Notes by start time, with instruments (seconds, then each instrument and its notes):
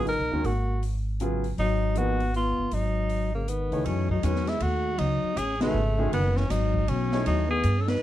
Already playing: upright bass G#1
0.05 trombone D#4, tenor saxophone A#4, open hi-hat
0.19 upright bass B1
0.32 upright bass D#2, grand piano D#3 G#3 C#4 F#4 A#4
0.43 upright bass G#1, trombone A#3, tenor saxophone F#4, open hi-hat
0.83 open hi-hat
1.20 grand piano C#3 F#3 B3 F4 G#4, closed hi-hat
1.44 open hi-hat
1.58 upright bass G#1, trombone F#3, tenor saxophone D#4, open hi-hat
1.95 grand piano F3 A#3 D#4 G#4 B4, trombone B3, tenor saxophone F#4, closed hi-hat
2.20 open hi-hat
2.34 trombone B3, tenor saxophone F4, open hi-hat
2.58 upright bass G1
2.71 upright bass G#1, trombone F#3, tenor saxophone D#4, open hi-hat
3.09 open hi-hat
3.34 trombone C#3, tenor saxophone A#3
3.48 trombone D#3, tenor saxophone B3, closed hi-hat
3.71 upright bass C#2, grand piano E3 A3 D#4 G#4 C#5, open hi-hat
3.85 upright bass F#2, trombone F#3, tenor saxophone C#4, ride
4.09 trombone F#3, tenor saxophone D#4, kick
4.23 upright bass E2, grand piano D#3 G#3 C#4 F#4 B4, trombone F#3, tenor saxophone C#4, hi-hat pedal, ride
4.36 snare
4.47 trombone G#3, tenor saxophone E4, snare, ride
4.60 upright bass D#2, trombone A3, tenor saxophone F#4, ride
4.97 upright bass C#2, trombone F#3, tenor saxophone D#4, ride
5.23 muted upright bass stroke
5.34 upright bass A1, trombone C#4, tenor saxophone G#4, hi-hat pedal, ride
5.58 trombone C#3, grand piano D#3 G#3 C#4 F#4, tenor saxophone A3, snare, ride
5.62 grand piano B4
5.74 upright bass G#1
5.98 grand piano D#3 G#3 C#4 F#4 G#4
6.10 upright bass F#1, trombone D#3, tenor saxophone B3, ride
6.35 trombone E3, tenor saxophone C#4, snare
6.50 upright bass G#1, trombone F#3, tenor saxophone D#4, snare, hi-hat pedal, ride
6.74 kick
6.87 upright bass B1, trombone F#3, tenor saxophone C#4, ride
7.12 grand piano A3 D#4 E4 G#4 C#5, snare
7.24 upright bass D#2, trombone F#3, tenor saxophone D#4, ride
7.48 trombone B3, tenor saxophone G#4
7.63 upright bass G2, hi-hat pedal, ride
7.78 trombone C#4, tenor saxophone A4
7.86 trombone D#4, tenor saxophone B4, snare, ride